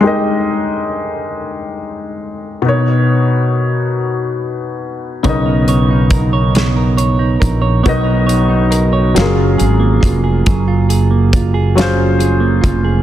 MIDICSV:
0, 0, Header, 1, 5, 480
1, 0, Start_track
1, 0, Tempo, 869565
1, 18, Time_signature, 6, 3, 24, 8
1, 7190, End_track
2, 0, Start_track
2, 0, Title_t, "Clean electric guitar"
2, 0, Program_c, 0, 27
2, 2894, Note_on_c, 0, 59, 82
2, 2897, Note_on_c, 0, 73, 71
2, 3013, Note_on_c, 0, 70, 64
2, 3136, Note_off_c, 0, 73, 0
2, 3138, Note_on_c, 0, 73, 68
2, 3259, Note_on_c, 0, 63, 63
2, 3375, Note_off_c, 0, 70, 0
2, 3377, Note_on_c, 0, 70, 65
2, 3492, Note_off_c, 0, 73, 0
2, 3494, Note_on_c, 0, 73, 65
2, 3612, Note_off_c, 0, 59, 0
2, 3619, Note_on_c, 0, 59, 73
2, 3620, Note_off_c, 0, 73, 0
2, 3622, Note_on_c, 0, 73, 66
2, 3731, Note_off_c, 0, 70, 0
2, 3733, Note_on_c, 0, 70, 56
2, 3847, Note_off_c, 0, 73, 0
2, 3850, Note_on_c, 0, 73, 67
2, 3962, Note_off_c, 0, 63, 0
2, 3969, Note_on_c, 0, 63, 65
2, 4083, Note_off_c, 0, 70, 0
2, 4085, Note_on_c, 0, 70, 60
2, 4202, Note_off_c, 0, 73, 0
2, 4204, Note_on_c, 0, 73, 66
2, 4317, Note_off_c, 0, 59, 0
2, 4323, Note_on_c, 0, 59, 85
2, 4324, Note_off_c, 0, 73, 0
2, 4326, Note_on_c, 0, 73, 79
2, 4437, Note_off_c, 0, 70, 0
2, 4439, Note_on_c, 0, 70, 67
2, 4560, Note_off_c, 0, 73, 0
2, 4562, Note_on_c, 0, 73, 65
2, 4679, Note_off_c, 0, 63, 0
2, 4686, Note_on_c, 0, 63, 64
2, 4804, Note_off_c, 0, 70, 0
2, 4806, Note_on_c, 0, 70, 70
2, 4926, Note_off_c, 0, 73, 0
2, 4928, Note_on_c, 0, 73, 69
2, 5047, Note_on_c, 0, 54, 86
2, 5050, Note_off_c, 0, 70, 0
2, 5052, Note_on_c, 0, 68, 54
2, 5099, Note_off_c, 0, 59, 0
2, 5100, Note_off_c, 0, 63, 0
2, 5163, Note_on_c, 0, 65, 59
2, 5287, Note_off_c, 0, 68, 0
2, 5289, Note_on_c, 0, 68, 68
2, 5408, Note_on_c, 0, 58, 69
2, 5518, Note_off_c, 0, 65, 0
2, 5524, Note_on_c, 0, 65, 66
2, 5649, Note_off_c, 0, 68, 0
2, 5651, Note_on_c, 0, 68, 65
2, 5769, Note_off_c, 0, 54, 0
2, 5776, Note_on_c, 0, 54, 83
2, 5778, Note_off_c, 0, 68, 0
2, 5780, Note_on_c, 0, 68, 72
2, 5888, Note_off_c, 0, 65, 0
2, 5894, Note_on_c, 0, 65, 73
2, 6010, Note_off_c, 0, 68, 0
2, 6012, Note_on_c, 0, 68, 71
2, 6129, Note_off_c, 0, 58, 0
2, 6131, Note_on_c, 0, 58, 68
2, 6246, Note_off_c, 0, 65, 0
2, 6253, Note_on_c, 0, 65, 65
2, 6368, Note_off_c, 0, 68, 0
2, 6371, Note_on_c, 0, 68, 73
2, 6483, Note_off_c, 0, 54, 0
2, 6489, Note_on_c, 0, 54, 84
2, 6492, Note_off_c, 0, 68, 0
2, 6494, Note_on_c, 0, 68, 71
2, 6610, Note_off_c, 0, 65, 0
2, 6616, Note_on_c, 0, 65, 59
2, 6727, Note_off_c, 0, 68, 0
2, 6729, Note_on_c, 0, 68, 64
2, 6843, Note_off_c, 0, 58, 0
2, 6846, Note_on_c, 0, 58, 70
2, 6860, Note_off_c, 0, 73, 0
2, 6956, Note_off_c, 0, 65, 0
2, 6963, Note_on_c, 0, 65, 64
2, 7088, Note_off_c, 0, 68, 0
2, 7090, Note_on_c, 0, 68, 68
2, 7190, Note_off_c, 0, 54, 0
2, 7190, Note_off_c, 0, 58, 0
2, 7190, Note_off_c, 0, 65, 0
2, 7190, Note_off_c, 0, 68, 0
2, 7190, End_track
3, 0, Start_track
3, 0, Title_t, "Grand piano"
3, 0, Program_c, 1, 0
3, 0, Control_c, 1, 64, 127
3, 3, Note_on_c, 1, 56, 84
3, 13, Note_on_c, 1, 63, 69
3, 21, Note_on_c, 1, 67, 73
3, 31, Note_on_c, 1, 70, 66
3, 40, Note_on_c, 1, 75, 84
3, 1428, Note_off_c, 1, 56, 0
3, 1433, Note_off_c, 1, 63, 0
3, 1437, Note_off_c, 1, 67, 0
3, 1442, Note_off_c, 1, 70, 0
3, 1446, Note_on_c, 1, 47, 79
3, 1447, Note_off_c, 1, 75, 0
3, 1454, Note_on_c, 1, 59, 73
3, 1465, Control_c, 1, 64, 0
3, 1465, Note_on_c, 1, 63, 69
3, 1472, Note_on_c, 1, 70, 65
3, 1482, Note_on_c, 1, 73, 92
3, 1565, Control_c, 1, 64, 127
3, 2870, Note_off_c, 1, 47, 0
3, 2874, Note_off_c, 1, 59, 0
3, 2879, Note_off_c, 1, 63, 0
3, 2883, Note_off_c, 1, 70, 0
3, 2888, Note_off_c, 1, 73, 0
3, 2888, Note_on_c, 1, 49, 81
3, 2895, Note_on_c, 1, 59, 70
3, 2901, Note_on_c, 1, 63, 75
3, 2913, Note_on_c, 1, 70, 72
3, 2920, Note_on_c, 1, 75, 85
3, 4311, Note_off_c, 1, 49, 0
3, 4314, Note_off_c, 1, 59, 0
3, 4317, Note_off_c, 1, 63, 0
3, 4323, Note_off_c, 1, 70, 0
3, 4327, Note_off_c, 1, 75, 0
3, 4336, Note_on_c, 1, 47, 82
3, 4344, Note_on_c, 1, 59, 68
3, 4347, Note_on_c, 1, 63, 69
3, 4350, Note_on_c, 1, 70, 67
3, 4354, Note_on_c, 1, 75, 94
3, 5050, Note_on_c, 1, 54, 81
3, 5057, Note_off_c, 1, 47, 0
3, 5057, Note_on_c, 1, 61, 64
3, 5061, Note_off_c, 1, 59, 0
3, 5062, Note_off_c, 1, 63, 0
3, 5064, Note_off_c, 1, 70, 0
3, 5066, Note_off_c, 1, 75, 0
3, 5066, Control_c, 1, 64, 0
3, 5068, Note_on_c, 1, 65, 68
3, 5076, Note_on_c, 1, 68, 75
3, 5085, Note_on_c, 1, 70, 78
3, 5151, Control_c, 1, 64, 127
3, 6472, Note_off_c, 1, 54, 0
3, 6475, Note_off_c, 1, 61, 0
3, 6481, Note_off_c, 1, 65, 0
3, 6485, Note_off_c, 1, 68, 0
3, 6488, Note_on_c, 1, 54, 76
3, 6489, Note_off_c, 1, 70, 0
3, 6496, Note_on_c, 1, 61, 74
3, 6505, Note_on_c, 1, 65, 74
3, 6513, Note_on_c, 1, 68, 68
3, 6524, Note_on_c, 1, 72, 86
3, 7190, Note_off_c, 1, 54, 0
3, 7190, Note_off_c, 1, 61, 0
3, 7190, Note_off_c, 1, 65, 0
3, 7190, Note_off_c, 1, 68, 0
3, 7190, Note_off_c, 1, 72, 0
3, 7190, End_track
4, 0, Start_track
4, 0, Title_t, "Fretless electric bass"
4, 0, Program_c, 2, 35
4, 2901, Note_on_c, 2, 35, 117
4, 4077, Note_off_c, 2, 35, 0
4, 4099, Note_on_c, 2, 34, 78
4, 4316, Note_off_c, 2, 34, 0
4, 4342, Note_on_c, 2, 35, 115
4, 5038, Note_off_c, 2, 35, 0
4, 5063, Note_on_c, 2, 30, 107
4, 5278, Note_off_c, 2, 30, 0
4, 5303, Note_on_c, 2, 32, 89
4, 5518, Note_off_c, 2, 32, 0
4, 5540, Note_on_c, 2, 29, 80
4, 5757, Note_off_c, 2, 29, 0
4, 5781, Note_on_c, 2, 30, 118
4, 6957, Note_off_c, 2, 30, 0
4, 6981, Note_on_c, 2, 29, 98
4, 7190, Note_off_c, 2, 29, 0
4, 7190, End_track
5, 0, Start_track
5, 0, Title_t, "Drums"
5, 2894, Note_on_c, 9, 42, 75
5, 2897, Note_on_c, 9, 36, 112
5, 2949, Note_off_c, 9, 42, 0
5, 2952, Note_off_c, 9, 36, 0
5, 3134, Note_on_c, 9, 42, 57
5, 3190, Note_off_c, 9, 42, 0
5, 3370, Note_on_c, 9, 42, 76
5, 3371, Note_on_c, 9, 36, 109
5, 3425, Note_off_c, 9, 42, 0
5, 3427, Note_off_c, 9, 36, 0
5, 3616, Note_on_c, 9, 42, 73
5, 3624, Note_on_c, 9, 38, 115
5, 3671, Note_off_c, 9, 42, 0
5, 3680, Note_off_c, 9, 38, 0
5, 3854, Note_on_c, 9, 42, 52
5, 3909, Note_off_c, 9, 42, 0
5, 4094, Note_on_c, 9, 36, 87
5, 4099, Note_on_c, 9, 42, 78
5, 4149, Note_off_c, 9, 36, 0
5, 4154, Note_off_c, 9, 42, 0
5, 4337, Note_on_c, 9, 42, 74
5, 4338, Note_on_c, 9, 36, 106
5, 4392, Note_off_c, 9, 42, 0
5, 4393, Note_off_c, 9, 36, 0
5, 4577, Note_on_c, 9, 42, 57
5, 4632, Note_off_c, 9, 42, 0
5, 4813, Note_on_c, 9, 42, 74
5, 4868, Note_off_c, 9, 42, 0
5, 5057, Note_on_c, 9, 42, 86
5, 5066, Note_on_c, 9, 38, 108
5, 5112, Note_off_c, 9, 42, 0
5, 5121, Note_off_c, 9, 38, 0
5, 5296, Note_on_c, 9, 42, 52
5, 5351, Note_off_c, 9, 42, 0
5, 5535, Note_on_c, 9, 36, 88
5, 5541, Note_on_c, 9, 42, 85
5, 5590, Note_off_c, 9, 36, 0
5, 5596, Note_off_c, 9, 42, 0
5, 5775, Note_on_c, 9, 42, 78
5, 5778, Note_on_c, 9, 36, 105
5, 5830, Note_off_c, 9, 42, 0
5, 5833, Note_off_c, 9, 36, 0
5, 6017, Note_on_c, 9, 42, 63
5, 6072, Note_off_c, 9, 42, 0
5, 6254, Note_on_c, 9, 42, 79
5, 6255, Note_on_c, 9, 36, 106
5, 6310, Note_off_c, 9, 36, 0
5, 6310, Note_off_c, 9, 42, 0
5, 6502, Note_on_c, 9, 42, 82
5, 6511, Note_on_c, 9, 38, 122
5, 6557, Note_off_c, 9, 42, 0
5, 6566, Note_off_c, 9, 38, 0
5, 6736, Note_on_c, 9, 42, 51
5, 6791, Note_off_c, 9, 42, 0
5, 6975, Note_on_c, 9, 36, 94
5, 6976, Note_on_c, 9, 42, 82
5, 7030, Note_off_c, 9, 36, 0
5, 7032, Note_off_c, 9, 42, 0
5, 7190, End_track
0, 0, End_of_file